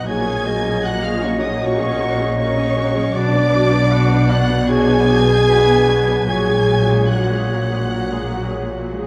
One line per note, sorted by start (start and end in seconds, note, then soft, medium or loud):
0.00 0.12 B2 medium
0.00 0.27 F#3 soft
0.00 0.12 B3 medium
0.00 0.12 D#4 soft
0.00 0.84 F#4 medium
0.00 0.12 B4 medium
0.00 0.12 D#5 medium
0.00 1.41 F#5 medium
0.08 3.11 A#1 medium
0.08 3.11 A#2 medium
0.08 3.18 A#2 medium
0.08 0.26 A#3 medium
0.08 0.26 F#4 medium
0.08 0.84 G#4 medium
0.08 0.48 C#5 medium
0.08 0.83 G#5 medium
0.08 0.84 G#6 loud
0.27 2.94 F#3 medium
0.27 0.47 C#4 medium
0.27 0.47 G#4 medium
0.47 2.75 G#3 medium
0.47 0.66 A#3 medium
0.47 0.66 F#4 medium
0.47 3.14 D#5 medium
0.66 0.85 C#4 medium
0.66 2.56 C#4 medium
0.66 0.86 G#4 medium
0.84 1.03 A#3 medium
0.84 1.04 F#4 medium
0.84 2.37 F#4 medium
0.84 1.03 F#4 medium
0.84 1.04 F#5 medium
0.84 1.05 F#6 loud
1.04 1.24 C#4 medium
1.04 1.24 F4 medium
1.04 2.18 G#4 medium
1.04 1.24 G#4 medium
1.04 1.24 F5 medium
1.04 1.24 F6 loud
1.23 1.43 A#3 medium
1.23 1.43 C#4 medium
1.23 1.43 F#4 medium
1.23 1.61 C#5 medium
1.23 1.43 C#5 medium
1.23 1.43 C#6 medium
1.41 1.62 C#4 medium
1.41 1.62 D#4 medium
1.41 1.62 G#4 medium
1.41 1.63 D#5 medium
1.41 1.80 F#5 medium
1.41 1.62 D#6 medium
1.61 1.80 A#3 medium
1.61 2.21 C#4 medium
1.61 1.79 F#4 medium
1.61 1.99 C#5 medium
1.61 2.37 C#5 medium
1.61 2.37 C#6 loud
1.81 2.01 C#4 medium
1.81 2.01 G#4 medium
1.81 5.71 F#5 medium
2.00 2.19 A#3 medium
2.00 2.19 F#4 medium
2.00 3.18 C#5 medium
2.19 2.38 C#4 medium
2.19 2.38 G#4 medium
2.19 3.18 G#4 medium
2.38 2.56 A#3 medium
2.38 3.14 C#4 medium
2.38 3.72 F#4 medium
2.38 2.56 F#4 medium
2.38 3.14 C#5 medium
2.38 3.14 C#6 loud
2.57 2.76 C#4 medium
2.57 3.18 C#4 medium
2.57 2.76 G#4 medium
2.76 3.18 G#3 medium
2.76 2.96 A#3 medium
2.76 2.96 F#4 medium
2.95 3.33 F#3 medium
2.95 3.15 C#4 medium
2.95 3.15 G#4 medium
3.13 6.24 B1 medium
3.13 6.31 B2 medium
3.13 6.24 B2 medium
3.13 4.30 D4 loud
3.13 3.32 D4 medium
3.13 3.33 F#4 medium
3.13 4.30 D5 loud
3.13 3.93 D5 loud
3.13 4.31 D6 loud
3.33 5.86 F#3 medium
3.33 3.54 B3 medium
3.33 3.52 D4 medium
3.53 3.91 B3 medium
3.53 3.71 D4 medium
3.53 3.73 F#4 medium
3.72 3.92 B3 medium
3.72 3.90 D4 medium
3.72 5.46 F#4 medium
3.91 5.66 B3 medium
3.91 4.09 D4 medium
3.91 4.10 F#4 medium
3.91 4.32 F#5 medium
4.11 4.30 B3 medium
4.11 4.28 D4 medium
4.29 4.47 D4 medium
4.29 4.68 F#4 medium
4.29 4.49 F#4 medium
4.29 4.71 D5 medium
4.29 4.69 F#5 loud
4.29 4.70 F#6 loud
4.49 4.68 B3 medium
4.49 4.66 D4 medium
4.49 4.87 B4 medium
4.68 4.86 D4 medium
4.68 4.86 F#4 medium
4.68 6.26 G#4 loud
4.68 5.20 C#5 medium
4.68 6.26 G#5 loud
4.68 6.26 G#6 loud
4.87 5.07 B3 medium
4.87 5.05 D4 medium
4.87 5.26 B4 medium
5.06 5.25 D4 medium
5.06 5.27 F#4 medium
5.26 5.47 B3 medium
5.26 5.45 D4 medium
5.26 6.31 B4 medium
5.47 5.65 D4 medium
5.47 5.66 F#4 medium
5.47 7.09 F#4 medium
5.47 6.25 B4 medium
5.66 5.87 B3 medium
5.66 6.06 B3 medium
5.66 5.86 D4 medium
5.87 6.47 F#3 medium
5.87 6.06 D4 medium
5.87 6.08 F#4 medium
6.07 6.28 B3 medium
6.07 6.31 B3 medium
6.07 6.28 D4 medium
6.27 9.07 A#1 medium
6.27 9.07 A#2 medium
6.27 6.47 F#3 medium
6.27 6.47 F#4 medium
6.27 7.08 G#4 medium
6.27 9.07 C#5 medium
6.27 7.08 G#5 loud
6.27 7.08 G#6 loud
6.48 9.07 F#3 medium
6.48 6.69 G#3 medium
6.48 6.69 G#4 medium
6.69 6.90 F#3 medium
6.69 9.07 G#3 medium
6.69 6.90 F#4 medium
6.89 7.10 G#3 medium
6.89 8.92 C#4 medium
6.89 7.10 G#4 medium
7.10 7.29 F#3 medium
7.10 8.72 F#4 medium
7.10 7.29 F#4 medium
7.10 9.07 F#4 medium
7.10 9.07 F#5 medium
7.10 9.07 F#6 medium
7.30 7.50 G#3 medium
7.30 7.50 G#4 medium
7.30 8.51 G#4 medium
7.50 7.70 F#3 medium
7.50 7.70 F#4 medium
7.50 7.90 C#5 medium
7.71 7.91 G#3 soft
7.71 7.91 G#4 soft
7.71 9.07 G#5 medium
7.91 8.10 F#3 medium
7.91 8.10 F#4 medium
7.91 8.31 C#5 medium
8.11 8.32 G#3 medium
8.11 8.32 G#4 medium
8.11 9.07 A#5 medium
8.32 8.53 F#3 medium
8.32 8.53 F#4 medium
8.32 9.07 C#5 medium
8.51 8.73 G#3 soft
8.51 8.73 G#4 soft
8.51 9.07 G#4 medium
8.73 8.93 F#3 soft
8.73 8.93 F#4 soft
8.73 9.07 F#4 medium
8.93 9.07 G#3 soft
8.93 9.07 C#4 soft
8.93 9.07 G#4 soft